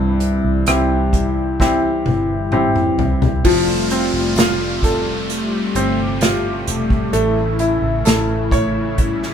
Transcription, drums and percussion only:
0.20 closed hi-hat
0.66 cross-stick, closed hi-hat
1.13 kick, closed hi-hat
1.60 kick, snare
2.06 high tom
2.52 mid tom
2.76 mid tom
2.99 floor tom
3.22 floor tom
3.45 kick, crash
3.90 closed hi-hat
4.36 snare, closed hi-hat, tambourine
4.83 kick, closed hi-hat
5.30 closed hi-hat
5.75 closed hi-hat
6.21 snare, closed hi-hat, tambourine
6.67 closed hi-hat
6.90 kick
7.13 closed hi-hat
7.59 closed hi-hat
8.05 snare, closed hi-hat, tambourine
8.51 kick, closed hi-hat
8.98 kick, closed hi-hat
9.23 snare

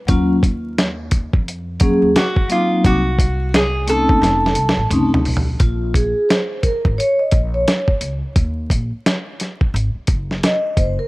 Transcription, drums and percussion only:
0.08 kick, closed hi-hat
0.43 kick, closed hi-hat
0.78 snare, closed hi-hat
1.11 kick, closed hi-hat
1.33 kick
1.48 closed hi-hat
1.80 kick, closed hi-hat
2.16 snare, closed hi-hat
2.36 kick
2.50 closed hi-hat
2.85 kick, closed hi-hat
3.19 kick, closed hi-hat
3.54 snare, closed hi-hat
3.88 closed hi-hat
4.09 kick
4.23 snare, closed hi-hat
4.46 snare
4.55 closed hi-hat
4.69 snare
4.91 closed hi-hat, mid tom
5.14 floor tom
5.25 open hi-hat
5.37 floor tom
5.60 kick, closed hi-hat
5.94 kick, closed hi-hat
6.30 snare, closed hi-hat
6.63 kick, closed hi-hat
6.85 kick
7.00 closed hi-hat
7.31 kick, closed hi-hat
7.68 snare, closed hi-hat
7.88 kick
8.01 closed hi-hat
8.36 kick, closed hi-hat
8.70 kick, closed hi-hat
9.06 snare, closed hi-hat
9.40 snare, closed hi-hat
9.61 kick
9.76 closed hi-hat
10.07 kick, closed hi-hat
10.31 snare
10.43 snare, closed hi-hat
10.77 kick, closed hi-hat

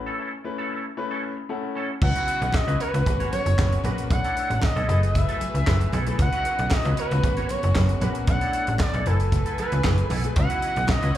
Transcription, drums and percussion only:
2.02 kick, crash, muted conga
2.16 closed hi-hat
2.28 closed hi-hat
2.42 closed hi-hat
2.52 kick, snare, clap, high conga
2.68 closed hi-hat
2.80 closed hi-hat
2.94 closed hi-hat
3.06 kick, closed hi-hat
3.20 closed hi-hat
3.33 closed hi-hat, muted conga
3.46 closed hi-hat
3.58 kick, snare, clap, high conga
3.72 closed hi-hat
3.84 closed hi-hat, high conga
3.98 closed hi-hat
4.11 kick, closed hi-hat, muted conga
4.24 closed hi-hat
4.37 closed hi-hat
4.51 closed hi-hat
4.61 kick, snare, clap, high conga
4.77 closed hi-hat
4.89 closed hi-hat
5.03 closed hi-hat
5.15 kick, closed hi-hat, muted conga, low conga
5.29 closed hi-hat
5.41 closed hi-hat, muted conga
5.55 closed hi-hat
5.67 kick, snare, clap, high conga
5.81 closed hi-hat
5.93 closed hi-hat, high conga
6.07 closed hi-hat
6.19 kick, closed hi-hat, muted conga
6.33 closed hi-hat
6.45 closed hi-hat
6.59 closed hi-hat
6.70 kick, snare, clap, high conga
6.85 closed hi-hat
6.97 closed hi-hat
7.11 closed hi-hat
7.23 kick, closed hi-hat, muted conga
7.37 closed hi-hat
7.49 closed hi-hat, muted conga
7.63 closed hi-hat
7.75 kick, snare, clap, high conga
7.89 closed hi-hat
8.01 closed hi-hat, high conga
8.15 closed hi-hat
8.27 kick, closed hi-hat, muted conga
8.41 closed hi-hat
8.53 closed hi-hat
8.67 closed hi-hat
8.78 kick, snare, clap, high conga
8.94 closed hi-hat
9.06 closed hi-hat
9.20 closed hi-hat
9.32 kick, closed hi-hat, muted conga, low conga
9.46 closed hi-hat
9.58 closed hi-hat, muted conga
9.72 closed hi-hat
9.84 kick, snare, clap, high conga
9.98 closed hi-hat
10.10 open hi-hat, high conga
10.24 closed hi-hat
10.36 kick, closed hi-hat, muted conga
10.50 closed hi-hat
10.62 closed hi-hat
10.76 closed hi-hat
10.87 kick, snare, clap, high conga
11.03 closed hi-hat

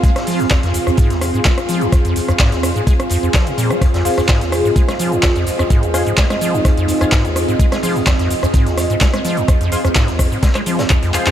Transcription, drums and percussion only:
0.03 kick, closed hi-hat, shaker
0.16 cross-stick, snare, closed hi-hat, shaker
0.27 open hi-hat, shaker
0.40 closed hi-hat, shaker
0.50 kick, cross-stick, snare, clap, closed hi-hat, shaker
0.63 snare, closed hi-hat, shaker
0.74 closed hi-hat, open hi-hat, shaker
0.87 cross-stick, shaker
0.97 kick, closed hi-hat, shaker
1.10 snare, closed hi-hat, shaker
1.21 cross-stick, closed hi-hat, open hi-hat, shaker
1.34 closed hi-hat, shaker
1.45 kick, snare, clap, closed hi-hat, shaker
1.58 cross-stick, closed hi-hat, shaker
1.69 closed hi-hat, open hi-hat, shaker
1.81 closed hi-hat, shaker
1.92 kick, cross-stick, closed hi-hat, shaker
2.05 closed hi-hat, shaker
2.16 closed hi-hat, open hi-hat, shaker
2.29 cross-stick, closed hi-hat, shaker
2.39 kick, snare, clap, closed hi-hat, shaker
2.52 snare, closed hi-hat, shaker
2.63 cross-stick, closed hi-hat, open hi-hat, shaker
2.76 closed hi-hat, shaker
2.87 kick, closed hi-hat, shaker
3.00 cross-stick, closed hi-hat, shaker
3.09 closed hi-hat, open hi-hat, shaker
3.24 shaker
3.33 kick, cross-stick, snare, clap, closed hi-hat, shaker
3.47 closed hi-hat, shaker
3.58 closed hi-hat, open hi-hat, shaker
3.71 cross-stick, closed hi-hat, shaker
3.81 kick, cross-stick, closed hi-hat, shaker
3.94 snare, closed hi-hat, shaker
4.05 open hi-hat, shaker
4.18 cross-stick, closed hi-hat, shaker
4.28 kick, snare, clap, closed hi-hat, shaker
4.41 snare, closed hi-hat, shaker
4.52 cross-stick, closed hi-hat, open hi-hat, shaker
4.66 shaker
4.75 kick, closed hi-hat, shaker
4.89 cross-stick, snare, closed hi-hat, shaker
4.99 closed hi-hat, open hi-hat, shaker
5.12 closed hi-hat, shaker
5.23 kick, cross-stick, snare, clap, closed hi-hat, shaker
5.36 closed hi-hat, shaker
5.47 closed hi-hat, open hi-hat, shaker
5.59 cross-stick, closed hi-hat, shaker
5.70 kick, closed hi-hat, shaker
5.83 closed hi-hat, shaker
5.94 cross-stick, closed hi-hat, open hi-hat, shaker
6.07 closed hi-hat, shaker
6.17 kick, snare, clap, closed hi-hat, shaker
6.30 cross-stick, snare, closed hi-hat, shaker
6.41 closed hi-hat, open hi-hat, shaker
6.55 shaker
6.65 kick, cross-stick, closed hi-hat, shaker
6.77 closed hi-hat, shaker
6.88 closed hi-hat, open hi-hat, shaker
7.01 cross-stick, closed hi-hat, shaker
7.12 kick, snare, clap, closed hi-hat, shaker
7.25 closed hi-hat, shaker
7.36 cross-stick, closed hi-hat, open hi-hat, shaker
7.48 closed hi-hat, shaker
7.59 kick, closed hi-hat, shaker
7.71 cross-stick, snare, closed hi-hat, shaker
7.82 open hi-hat, shaker
7.96 closed hi-hat, shaker
8.06 kick, cross-stick, snare, clap, closed hi-hat, shaker
8.19 snare, closed hi-hat, shaker
8.30 closed hi-hat, open hi-hat, shaker
8.43 cross-stick, shaker
8.53 kick, closed hi-hat, shaker
8.66 snare, closed hi-hat, shaker
8.78 cross-stick, closed hi-hat, open hi-hat, shaker
8.90 closed hi-hat, shaker
9.01 kick, snare, clap, closed hi-hat, shaker
9.14 cross-stick, closed hi-hat, shaker
9.25 closed hi-hat, open hi-hat, shaker
9.37 closed hi-hat, shaker
9.48 kick, cross-stick, closed hi-hat, shaker
9.61 closed hi-hat, shaker
9.72 closed hi-hat, open hi-hat, shaker
9.85 cross-stick, closed hi-hat, shaker
9.95 kick, snare, clap, closed hi-hat, shaker
10.08 snare, closed hi-hat, shaker
10.19 kick, cross-stick, open hi-hat, shaker
10.32 shaker
10.43 kick, snare, closed hi-hat, shaker
10.55 cross-stick, clap, closed hi-hat, shaker
10.66 closed hi-hat, open hi-hat, shaker
10.79 snare, closed hi-hat, shaker
10.90 kick, cross-stick, clap, closed hi-hat, shaker
11.02 closed hi-hat, shaker
11.14 clap, closed hi-hat, open hi-hat, shaker
11.26 clap, shaker

